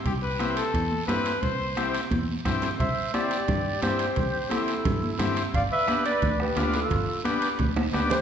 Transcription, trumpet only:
\new Staff \with { instrumentName = "Trumpet" } { \time 4/4 \key c \major \tempo 4 = 175 g'8 b'4 a'4. b'4 | c''4. r2 r8 | c''4 g'2 g'4~ | g'4 e'2~ e'8 r8 |
d''8 b'4 b'4 g'4 f'8~ | f'4 r2 r8 g'8 | }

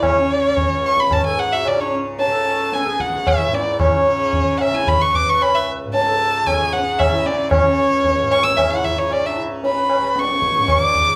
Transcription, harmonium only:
\new Staff \with { instrumentName = "Harmonium" } { \time 7/4 \tempo 4 = 113 e'16 cis'2 a'16 gis'16 fis'8 d'16 cis'16 r8 a'4 gis'4 e'8.~ | e'16 cis'4. e'8 b'4 b'8 r8 a'4 gis'4 e'8.~ | e'16 cis'4. cis''16 e''16 e'8 e'16 cis'16 d'16 e'16 r8 b'8.~ b'32 d''32 cis''4 d''8. | }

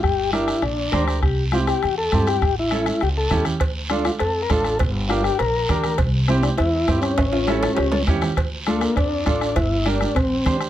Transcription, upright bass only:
\new Staff \with { instrumentName = "Upright bass" } { \clef bass \time 4/4 \key d \minor \tempo 4 = 202 g,,2 bes,,4 d,4 | c,2 e,4 g,4 | a,,2 cis,4 e,4 | d,2 f,4 a,,4 |
g,,2 bes,,4 d,4 | c,2 e,4 g,4 | a,,2 cis,4 e,4 | d,2 f,4 a,,4 |
g,,2 bes,,4 d,4 | }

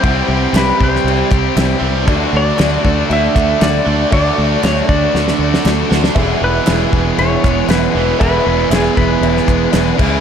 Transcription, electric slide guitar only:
\new Staff \with { instrumentName = "Electric slide guitar" } { \time 4/4 \key e \mixolydian \tempo 4 = 118 c''4 b'8 c''2 r8 | r8 d''4. e''4 d''4 | d''4 cis''8 d''2 r8 | r8 b'4. cis''4 b'4 |
b'4 gis'8 b'2 r8 | }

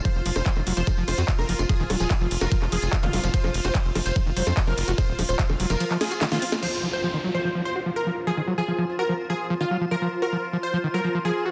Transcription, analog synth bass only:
\new Staff \with { instrumentName = "Analog synth bass" } { \clef bass \time 4/4 \key f \phrygian \tempo 4 = 146 r16 f,,16 f,,16 f,,16 r16 f,,16 f,,16 f,,16 r16 f,,16 f,,16 f,16 r16 f,,16 ges,,16 f,,16 | r16 ees,,16 ees,,16 ees,,16 r16 f,,16 f,,16 f,,16 r16 f,,16 f,,16 f,,16 r16 f,,16 f,,16 f,,16 | r16 f,,16 f,,16 f,,16 r16 f,,16 f,,16 f,,16 r16 f,,16 f,,16 f,16 r16 f,,16 ges,,16 f,,16 | r16 ees,,16 ees,,16 ees,,16 r16 f,,16 f,,16 f,,16 r2 |
r1 | r1 | r1 | }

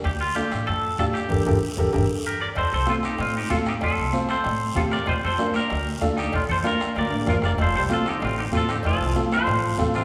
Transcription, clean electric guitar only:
\new Staff \with { instrumentName = "Clean electric guitar" } { \time 4/4 \key f \mixolydian \tempo 4 = 191 g'8 f'8 g'4 a'4 a'8 g'8~ | g'2. <g' bes'>8 <bes' d''>8 | <a' c''>8 <a' c''>8 <f' a'>8 <ees' g'>8 <c' f'>8 <ees' g'>8 <f' a'>8 <ees' g'>8 | <f' a'>4. <a' c''>4. <f' a'>8 <bes' d''>8 |
<f' c''>8 <a' c''>4 <g' bes'>4. r8 <ees' g'>8 | <d' f'>8 <a' c''>8 <f' bes'>4 <bes' d''>4 <f' bes'>8 <bes' d''>8 | <a' c''>8 <a' c''>8 <f' a'>8 <ees' g'>8 <c' f'>8 <ees' g'>8 <f' a'>8 <ees' g'>8 | <f' a'>4. <a' c''>2 <d' f'>8 | }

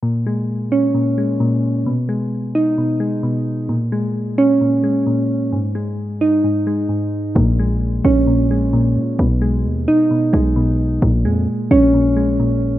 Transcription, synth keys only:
\new Staff \with { instrumentName = "Synth keys" } { \clef bass \time 4/4 \key bes \phrygian \tempo 4 = 131 bes,8 aes4 des'8 bes,8 aes8 bes,4 | b,8 gis4 dis'8 b,8 gis8 b,4 | bes,8 aes4 des'8 bes,8 aes8 bes,4 | aes,8 aes4 ees'8 aes,8 aes8 aes,4 |
bes,8 aes4 des'8 bes,8 aes8 bes,4 | b,8 gis4 dis'8 b,8 gis8 b,4 | bes,8 aes4 des'8 bes,8 aes8 bes,4 | }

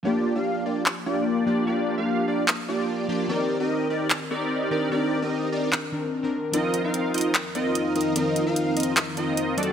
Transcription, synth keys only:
\new Staff \with { instrumentName = "Synth keys" } { \time 4/4 \key g \minor \tempo 4 = 148 <f bes d' g'>2.~ <f bes d' g'>8 <f bes d' g'>8 | <f bes d' g'>2.~ <f bes d' g'>8 <f bes d' g'>8 | <ees c' bes' d''>2.~ <ees c' bes' d''>8 <ees c' d' bes'>8 | <ees c' d' bes'>2~ <ees c' d' bes'>8 <ees c' d' bes'>16 r8 <ees c' d' bes'>8. |
<f c' ees' bes'>2.~ <f c' ees' bes'>8 <f c' ees' bes'>8 | <f c' ees' bes'>2.~ <f c' ees' bes'>8 <fis c' d' a'>8 | }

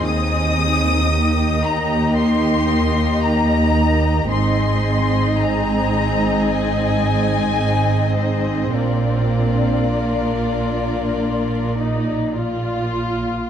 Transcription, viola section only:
\new Staff \with { instrumentName = "Viola section" } { \time 4/4 \key ees \major \tempo 4 = 55 << { ees'1 | ees'1 | d'2~ d'8 ees'8 f'4 | } \\ { c'4 bes2. | c'1~ | c'4 bes4. r4. | } >> }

